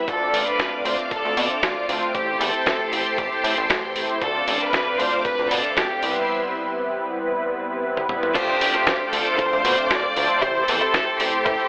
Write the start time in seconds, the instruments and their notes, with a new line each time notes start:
0.07 analog synth bass D2, analog polysynth A3 C4 D4 F4 D5, string machine C4 F5 D6, violin section A4, kick, closed hi-hat
0.33 analog synth bass A1, open hi-hat
0.47 violin section B4, closed hi-hat
0.59 kick, snare, closed hi-hat
0.85 analog synth bass D2, violin section C5, open hi-hat
0.99 closed hi-hat
1.10 analog synth bass D1, violin section A4, kick, closed hi-hat
1.25 analog synth bass D2, closed hi-hat
1.37 analog synth bass B2, open hi-hat
1.51 analog synth bass A1, closed hi-hat
1.63 analog synth bass A1, violin section F4, kick, snare, closed hi-hat
1.89 analog synth bass D2, analog polysynth A3 C4 D4 F4 C5, open hi-hat
2.03 closed hi-hat
2.14 analog synth bass A1, analog polysynth A3 C4 E4 G4 C5, violin section G4, string machine A4 G5 C6, kick, closed hi-hat
2.40 analog synth bass E2, violin section A4, open hi-hat
2.55 closed hi-hat
2.66 kick, snare, closed hi-hat
2.92 analog synth bass A1, violin section G4, open hi-hat
3.06 closed hi-hat
3.18 analog synth bass A1, kick, closed hi-hat
3.32 analog synth bass A2, closed hi-hat
3.44 analog synth bass A2, open hi-hat
3.58 analog synth bass A1, closed hi-hat
3.70 analog synth bass A1, kick, snare, closed hi-hat
3.95 analog polysynth A3 C4 E4 G4 C5, open hi-hat
4.10 closed hi-hat
4.21 analog synth bass D2, analog polysynth A3 C4 D4 F4 D5, string machine C4 F5 D6, violin section A4, kick, closed hi-hat
4.47 analog synth bass A1, open hi-hat
4.61 violin section B4, closed hi-hat
4.73 kick, snare, closed hi-hat
4.98 analog synth bass D2, violin section C5, open hi-hat
5.13 closed hi-hat
5.24 analog synth bass D1, violin section B4, kick, closed hi-hat
5.39 analog synth bass D2, closed hi-hat
5.49 analog synth bass B2, violin section A4, open hi-hat
5.65 analog synth bass A1
5.75 analog synth bass A1, violin section G4, kick, snare, closed hi-hat
6.02 analog synth bass C2, analog polysynth G3 B3 C4 E4 B4, string machine B4 E5 C6, open hi-hat
6.16 closed hi-hat
6.28 analog polysynth G3 B3 C4 E4 B4
7.97 high tom
8.09 analog polysynth G3 B3 C4 E4 B4, mid tom
8.23 mid tom
8.34 analog synth bass D2, analog polysynth A3 C4 D4 F4 C5, clean electric guitar D4 F4 A4 C5, violin section G4, string machine C5 F5 D6, kick, closed hi-hat, crash
8.61 analog synth bass A1, open hi-hat
8.74 clean electric guitar D4 F4 A4 C5, closed hi-hat
8.87 kick, snare, closed hi-hat
9.12 analog synth bass D2, violin section A4, muted clean electric guitar stroke, open hi-hat
9.27 closed hi-hat
9.38 analog synth bass D1, clean electric guitar D4 F4 A4 C5, violin section C5, kick, closed hi-hat
9.53 analog synth bass D2, closed hi-hat
9.65 analog synth bass B2, open hi-hat
9.78 analog synth bass A1, closed hi-hat
9.90 analog synth bass A1, violin section D5, kick, snare, closed hi-hat
10.03 muted clean electric guitar stroke
10.15 analog synth bass D2, analog polysynth A3 C4 D4 F4 C5, muted clean electric guitar stroke, open hi-hat
10.30 closed hi-hat
10.41 analog synth bass A1, analog polysynth A3 C4 E4 G4 C5, clean electric guitar E4 G4 A4 C5, string machine A4 G5 C6, violin section C5, kick, closed hi-hat
10.68 analog synth bass E2, violin section A4, open hi-hat
10.81 clean electric guitar E4 G4 A4 C5, closed hi-hat
10.94 kick, snare, closed hi-hat
11.19 analog synth bass A1, violin section G4, muted clean electric guitar stroke, open hi-hat
11.33 closed hi-hat
11.45 analog synth bass A1, clean electric guitar E4 G4 A4 C5, kick, closed hi-hat
11.60 analog synth bass A2, closed hi-hat